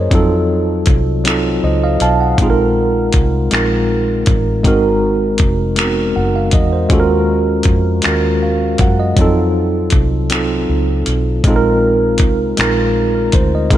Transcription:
Already playing: tine electric piano G#4 A#4 C5 C#5 D#5
0.11 fingered electric bass F2, tine electric piano F#3 C4 D#4 F4, kick, closed hi-hat
0.15 tine electric piano A4
0.86 fingered electric bass C2, kick, closed hi-hat
1.24 tine electric piano F#3 C4 D#4 F4, finger snap, closed hi-hat
1.28 tine electric piano A4
1.64 fingered electric bass C#2, tine electric piano C5 D#5
1.84 tine electric piano D#5 F5
2.00 fingered electric bass B1, tine electric piano F5 A5, closed hi-hat
2.21 tine electric piano F#5
2.38 tine electric piano G#3 C4 D#4 F4, kick, closed hi-hat
2.43 tine electric piano G#4
2.50 tine electric piano A#4
3.13 fingered electric bass C2, kick, closed hi-hat
3.51 fingered electric bass A#1, tine electric piano G#3 C4 D#4 F4, finger snap, closed hi-hat
3.56 tine electric piano A#4
4.26 fingered electric bass A1, kick, closed hi-hat
4.64 fingered electric bass G#1, tine electric piano G#3 C4 D#4 F#4 A#4, kick, closed hi-hat
5.38 fingered electric bass F1, kick, closed hi-hat
5.76 tine electric piano G#3 B3 D#4 F#4, finger snap, closed hi-hat
5.80 tine electric piano C4 A#4
6.16 fingered electric bass F#1, tine electric piano F#5
6.36 tine electric piano F5
6.51 fingered electric bass E2, tine electric piano D#5, kick, closed hi-hat
6.73 tine electric piano C5
6.89 fingered electric bass D#2, tine electric piano G#3 C#4 F4 F#4, kick, closed hi-hat
6.94 tine electric piano A4
7.00 tine electric piano A#4
7.63 fingered electric bass F2, kick, closed hi-hat
8.02 fingered electric bass D#2, tine electric piano G#3 C#4 F4, finger snap, closed hi-hat
8.07 tine electric piano F#4 A#4
8.43 tine electric piano F5
8.78 fingered electric bass F#2, tine electric piano F#5, kick, closed hi-hat
9.00 tine electric piano D#5
9.17 fingered electric bass F2, tine electric piano F#3 C4 D#4 F4, kick, closed hi-hat
9.21 tine electric piano A4
9.90 fingered electric bass C2, kick, closed hi-hat
10.30 tine electric piano F#3 C4 D#4 F4, finger snap, closed hi-hat
10.34 tine electric piano A4
10.69 fingered electric bass C#2
11.06 fingered electric bass B1, closed hi-hat
11.44 fingered electric bass A#1, tine electric piano G#3 C4 D#4 F4, kick, closed hi-hat
11.49 tine electric piano A4
11.56 tine electric piano A#4
12.18 fingered electric bass C2, kick, closed hi-hat
12.57 fingered electric bass A#1, tine electric piano G#3 C4 D#4 F4, finger snap, closed hi-hat
12.61 tine electric piano A#4
13.15 tine electric piano A#4
13.32 fingered electric bass D2, tine electric piano C5, kick, closed hi-hat
13.55 tine electric piano D#5
13.70 fingered electric bass C#2, tine electric piano G#3 C4 D#4 F4, kick, closed hi-hat

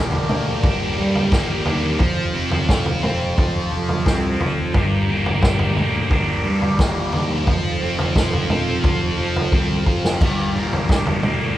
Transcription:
Already playing: picked electric bass G1, distorted electric guitar G3 A#3 D4, string machine G4 A#4 D5 A#5
0.12 floor tom
0.29 picked electric bass D2, distorted electric guitar A#3, mid tom, low conga
0.47 high conga
0.63 picked electric bass G1, distorted electric guitar D4, kick, floor tom
0.97 picked electric bass G2, distorted electric guitar G3, high conga
1.15 floor tom
1.32 picked electric bass G1, distorted electric guitar A#3, kick, snare
1.50 high conga
1.65 picked electric bass D#2, distorted electric guitar D4, floor tom, low conga
1.84 high conga
1.99 picked electric bass F1, distorted electric guitar F3, string machine F4 A4 C5 A5, kick, floor tom
2.34 picked electric bass F1, distorted electric guitar C4
2.51 floor tom
2.68 picked electric bass F1, distorted electric guitar F4, kick, snare, mid tom
2.86 floor tom
3.03 picked electric bass F1, distorted electric guitar C4, mid tom, low conga
3.22 high conga
3.37 picked electric bass F1, distorted electric guitar F4, kick, floor tom
3.72 picked electric bass F1, distorted electric guitar F3, high conga
3.89 floor tom
4.06 picked electric bass C2, distorted electric guitar C4, kick, snare
4.25 high conga
4.40 picked electric bass F1, distorted electric guitar F4, floor tom, low conga
4.59 high conga
4.74 picked electric bass G1, distorted electric guitar G2, string machine G4 A#4 D5 A#5, kick, floor tom
5.08 picked electric bass G1, distorted electric guitar A#3
5.26 floor tom
5.42 picked electric bass G1, distorted electric guitar D4, kick, snare, mid tom
5.59 floor tom
5.77 picked electric bass D2, distorted electric guitar A#3, mid tom, low conga
5.95 high conga
6.10 picked electric bass G1, distorted electric guitar D4, kick, floor tom
6.45 picked electric bass G2, distorted electric guitar G3, high conga
6.62 floor tom
6.79 picked electric bass G1, distorted electric guitar A#3, kick, snare
6.97 high conga
7.13 picked electric bass D#2, distorted electric guitar D4, floor tom, low conga
7.31 high conga
7.47 picked electric bass F1, distorted electric guitar F3, string machine F4 A4 C5 A5, kick, floor tom
7.81 picked electric bass F1, distorted electric guitar C4
7.99 floor tom, low conga
8.15 picked electric bass F1, distorted electric guitar F4, kick, snare, mid tom
8.33 floor tom
8.50 picked electric bass F1, distorted electric guitar C4, mid tom, low conga
8.68 high conga
8.83 picked electric bass F1, distorted electric guitar F4, kick, floor tom
9.18 picked electric bass F1, distorted electric guitar F3, high conga
9.36 floor tom
9.52 picked electric bass C2, distorted electric guitar C4, kick, high tom
9.71 high conga
9.86 picked electric bass F1, distorted electric guitar F4, kick, low conga
10.05 snare, low conga
10.20 picked electric bass G1, distorted electric guitar G2, string machine G4 A#4 D5 A#5, kick, floor tom, crash
10.54 picked electric bass G1, distorted electric guitar A#3
10.73 floor tom
10.89 picked electric bass G1, distorted electric guitar D4, kick, snare, mid tom
11.07 floor tom
11.23 picked electric bass D2, distorted electric guitar A#3, mid tom, low conga
11.41 high conga

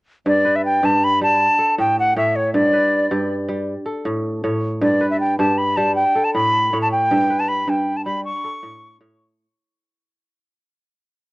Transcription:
0.26 kora G2, flute D5
0.45 kora B4
0.56 flute E5
0.65 flute G5
0.83 kora G2 G4, flute A5
1.04 flute B5
1.21 kora G3, flute A5
1.59 kora A4
1.78 kora A2, flute G5
1.99 flute F#5
2.16 kora A2 C#5, flute E5
2.36 flute C#5
2.54 kora G2, flute D5
2.73 kora B4
3.11 kora G2 G4
3.49 kora G3
3.86 kora A4
4.05 kora A2
4.44 kora A2 C#5
4.81 kora G2, flute D5
5.01 kora B4
5.10 flute E5
5.20 flute G5
5.39 kora G2 G4, flute A5
5.58 flute B5
5.77 kora G3, flute A5
5.95 flute G5
6.15 kora A4
6.24 flute A5
6.34 kora A2, flute B5
6.73 kora A2 C#5
6.82 flute A5
6.92 flute G5
7.11 kora G2
7.30 kora B4
7.40 flute A5
7.48 flute B5
7.68 kora G2, flute G5
7.97 flute A5
8.05 kora G3, flute B5
8.25 flute C#6
8.44 kora A4
8.63 kora A2
9.01 kora A2 C#5

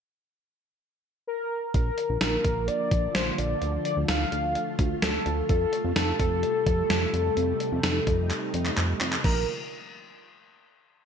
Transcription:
1.27 soft synth lead A#4
1.74 analog synth bass A#1, string machine D3 F3 A#3 F4, soft synth lead A#4, kick, closed hi-hat
1.98 closed hi-hat
2.10 analog synth bass A#1
2.21 analog synth bass A#1, soft synth lead A#4, snare, closed hi-hat
2.45 analog synth bass A#1, kick, closed hi-hat
2.68 soft synth lead D5, closed hi-hat
2.91 analog synth bass A#1, kick, closed hi-hat
3.15 analog synth bass A#1, soft synth lead C5, snare, closed hi-hat
3.38 analog synth bass A#1, soft synth lead D5, closed hi-hat
3.62 analog synth bass D2, string machine A3, closed hi-hat
3.85 soft synth lead D5, closed hi-hat
3.97 analog synth bass D2
4.08 analog synth bass D2, soft synth lead F5, snare, closed hi-hat
4.32 analog synth bass D2, closed hi-hat
4.55 closed hi-hat
4.79 analog synth bass D2, kick, closed hi-hat
5.02 analog synth bass D2, soft synth lead A4, snare, closed hi-hat
5.26 analog synth bass D2, closed hi-hat
5.49 analog synth bass F2, string machine C3 G3, soft synth lead A4, kick, closed hi-hat
5.73 closed hi-hat
5.84 analog synth bass F2
5.96 analog synth bass F2, soft synth lead A4, snare, closed hi-hat
6.19 analog synth bass F2, soft synth lead A4, kick, closed hi-hat
6.43 closed hi-hat
6.66 analog synth bass F2, kick, closed hi-hat
6.90 analog synth bass F2, snare, closed hi-hat
7.13 analog synth bass F2, closed hi-hat
7.37 analog synth bass F2, string machine D#4, closed hi-hat
7.60 closed hi-hat
7.72 analog synth bass F2
7.83 analog synth bass F2, snare, closed hi-hat
8.07 analog synth bass F2, kick, closed hi-hat
8.30 clap, closed hi-hat
8.54 analog synth bass F2, closed hi-hat
8.66 clap
8.77 analog synth bass F2, clap, closed hi-hat
9.01 analog synth bass F2, clap, closed hi-hat
9.13 clap
9.24 analog synth bass A#1, soft synth lead A#4, kick, crash

